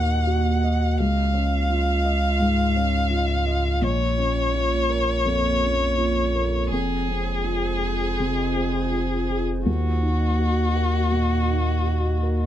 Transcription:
0.00 0.99 D#2 medium
0.00 1.01 D#2 medium
0.00 0.14 A#2 soft
0.00 0.95 A#3 medium
0.00 1.01 A#3 soft
0.00 0.27 F#4 soft
0.00 0.94 F#4 medium
0.00 0.64 D#5 soft
0.00 3.79 D#5 medium
0.00 1.00 F#5 medium
0.27 0.84 F#4 soft
0.64 0.99 D#5 soft
0.97 3.84 C#2 medium
0.97 2.38 C#2 medium
0.97 3.84 G#3 medium
0.97 6.71 F4 medium
0.97 3.85 F5 medium
1.34 1.91 C#4 medium
1.69 2.27 F4 soft
2.05 2.62 D#5 medium
2.40 2.97 G#2 medium
2.76 3.33 C#4 medium
3.11 3.68 F4 medium
3.47 3.83 D#5 medium
3.81 5.21 A#1 medium
3.81 6.72 A#1 medium
3.81 6.72 A#3 medium
3.81 6.72 C#5 medium
3.81 6.71 C#5 medium
4.18 4.76 C#4 medium
4.54 5.12 F4 medium
4.89 5.47 A#4 medium
5.25 5.84 F2 medium
5.62 6.20 C#4 soft
5.98 6.56 F4 soft
6.35 6.72 A#4 soft
6.71 9.67 F1 medium
6.71 8.16 F2 medium
6.71 9.67 G#3 medium
6.71 9.63 F4 medium
6.71 9.43 G#4 medium
6.71 9.67 C5 medium
7.08 7.68 C4 soft
7.44 8.04 F4 soft
7.81 8.41 G#4 soft
8.20 8.79 C3 soft
8.56 9.15 C4 soft
8.92 9.52 F4 soft
9.28 9.66 G#4 soft
9.65 12.46 D#2 medium
9.65 11.08 D#2 soft
9.65 12.46 A#3 medium
9.65 12.46 F#4 soft
9.65 12.46 F#4 medium
9.65 12.46 D#5 medium
10.02 10.61 D#4 soft
10.39 10.97 F#4 soft
10.76 11.34 A#4 soft
11.12 11.70 A#2 soft
11.49 12.07 D#4 soft
11.85 12.43 F#4 soft
12.23 12.46 A#4 soft

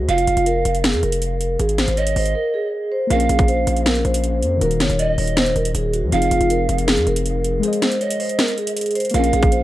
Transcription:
0.09 0.27 F1 loud
0.09 0.23 F4 medium
0.09 0.80 F5 loud
0.09 closed hi-hat medium
0.18 closed hi-hat medium
0.27 0.36 F1 loud
0.27 0.42 F4 medium
0.27 closed hi-hat medium
0.37 0.64 F1 loud
0.37 closed hi-hat medium
0.46 0.82 A#4 medium
0.46 closed hi-hat medium
0.65 0.95 F1 loud
0.65 closed hi-hat medium
0.75 closed hi-hat medium
0.84 0.99 G#4 medium
0.84 snare loud
0.84 closed hi-hat medium
0.93 1.02 F2 loud
0.93 closed hi-hat medium
1.03 1.57 F1 loud
1.03 1.56 A#4 medium
1.03 closed hi-hat medium
1.12 closed hi-hat loud
1.22 closed hi-hat medium
1.41 closed hi-hat medium
1.59 1.87 G#1 loud
1.59 1.74 G#4 loud
1.59 closed hi-hat medium
1.69 closed hi-hat medium
1.78 1.93 C5 medium
1.78 snare medium
1.78 closed hi-hat medium
1.88 2.15 G#1 loud
1.88 closed hi-hat medium
1.97 2.12 C#5 medium
1.97 2.69 D#5 medium
1.97 closed hi-hat medium
2.07 closed hi-hat medium
2.16 2.35 G#1 loud
2.16 2.31 C5 medium
2.16 open hi-hat medium
2.26 closed hi-hat medium
2.35 2.50 A#4 medium
2.54 2.89 G#4 medium
2.92 3.06 C5 medium
3.07 3.29 A#1 loud
3.07 4.57 A#3 medium
3.07 4.58 F4 medium
3.07 3.25 A#4 loud
3.07 3.82 F5 loud
3.07 closed hi-hat medium
3.12 4.61 C#4 medium
3.12 4.59 G#4 medium
3.20 closed hi-hat medium
3.29 3.66 A#1 loud
3.29 3.44 G#4 medium
3.29 closed hi-hat medium
3.39 kick medium
3.39 closed hi-hat medium
3.48 3.84 C5 medium
3.48 closed hi-hat medium
3.67 4.03 A#1 loud
3.67 closed hi-hat medium
3.77 closed hi-hat medium
3.86 4.00 A#4 medium
3.86 snare loud
3.86 closed hi-hat medium
3.95 closed hi-hat medium
4.05 4.44 A#1 loud
4.05 4.58 C5 medium
4.05 closed hi-hat soft
4.14 closed hi-hat medium
4.24 closed hi-hat medium
4.43 4.60 F2 loud
4.43 closed hi-hat medium
4.57 6.07 D#3 medium
4.57 6.09 D#4 medium
4.61 4.82 D#1 loud
4.61 6.10 F#4 medium
4.61 4.76 A#4 loud
4.61 6.11 A#4 medium
4.61 closed hi-hat medium
4.71 closed hi-hat medium
4.80 4.89 F1 loud
4.80 4.95 C#5 medium
4.80 snare medium
4.80 closed hi-hat medium
4.90 5.17 D#1 loud
4.90 closed hi-hat medium
4.99 5.14 D#5 medium
4.99 5.71 D#5 medium
4.99 closed hi-hat medium
5.18 5.54 D#1 loud
5.18 5.33 C#5 medium
5.18 open hi-hat medium
5.27 closed hi-hat medium
5.37 5.51 C5 medium
5.37 snare loud
5.37 closed hi-hat medium
5.46 closed hi-hat medium
5.56 5.74 D#1 loud
5.56 5.70 A#4 medium
5.56 closed hi-hat soft
5.65 closed hi-hat medium
5.75 6.04 D#1 loud
5.75 5.89 G#4 medium
5.75 closed hi-hat medium
5.94 6.08 F#4 medium
5.94 closed hi-hat medium
6.03 6.12 D#2 loud
6.09 6.30 F1 loud
6.09 7.59 F3 medium
6.09 7.60 C4 medium
6.09 6.27 F4 medium
6.09 6.84 F5 loud
6.09 closed hi-hat medium
6.14 7.61 D#4 medium
6.14 7.61 G#4 medium
6.22 closed hi-hat medium
6.31 6.40 F1 loud
6.31 6.46 F4 medium
6.31 closed hi-hat medium
6.41 6.68 F1 loud
6.41 closed hi-hat medium
6.50 6.86 A#4 medium
6.50 closed hi-hat medium
6.69 6.99 F1 loud
6.69 closed hi-hat medium
6.78 closed hi-hat medium
6.88 7.02 G#4 medium
6.88 snare loud
6.88 closed hi-hat medium
6.97 7.06 F2 loud
6.97 closed hi-hat medium
7.07 7.61 F1 loud
7.07 7.60 A#4 medium
7.07 closed hi-hat medium
7.16 closed hi-hat medium
7.26 closed hi-hat medium
7.44 closed hi-hat medium
7.60 9.09 G#3 medium
7.60 9.11 G#4 medium
7.60 7.78 G#4 loud
7.60 closed hi-hat medium
7.65 9.12 C5 medium
7.65 9.13 D#5 medium
7.73 closed hi-hat medium
7.82 7.97 C5 medium
7.82 snare medium
7.82 closed hi-hat medium
7.92 closed hi-hat medium
8.01 8.16 C#5 medium
8.01 8.73 D#5 medium
8.01 closed hi-hat medium
8.10 closed hi-hat medium
8.20 8.34 C5 medium
8.20 open hi-hat medium
8.29 closed hi-hat medium
8.39 8.53 A#4 medium
8.39 snare loud
8.39 closed hi-hat medium
8.48 closed hi-hat medium
8.58 8.93 G#4 medium
8.58 closed hi-hat soft
8.67 closed hi-hat medium
8.77 closed hi-hat medium
8.81 closed hi-hat medium
8.86 closed hi-hat medium
8.91 closed hi-hat soft
8.95 9.10 C5 medium
8.95 closed hi-hat medium
9.00 closed hi-hat medium
9.05 closed hi-hat medium
9.10 9.63 A#3 medium
9.10 closed hi-hat medium
9.14 9.32 A#1 loud
9.14 9.63 F4 medium
9.14 9.63 G#4 medium
9.14 9.29 A#4 loud
9.14 9.63 F5 loud
9.14 closed hi-hat medium
9.19 9.63 C#4 medium
9.24 closed hi-hat medium
9.33 9.63 A#1 loud
9.33 9.48 G#4 medium
9.33 closed hi-hat medium
9.43 kick loud
9.43 closed hi-hat medium
9.52 9.63 C5 medium
9.52 closed hi-hat medium

